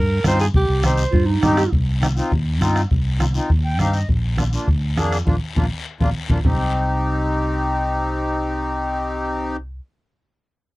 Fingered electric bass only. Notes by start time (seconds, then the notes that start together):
Already playing: G2
0.25 G2
0.54 C2
0.69 C2
1.13 G2
1.43 G2
1.72 C2
2.32 D#2
2.61 G2
2.91 C2
3.50 D#2
3.79 G2
4.09 A#1
4.68 D2
4.97 F2
5.27 A#1
5.57 A#1
6.01 A#1
6.30 A#1
6.44 C2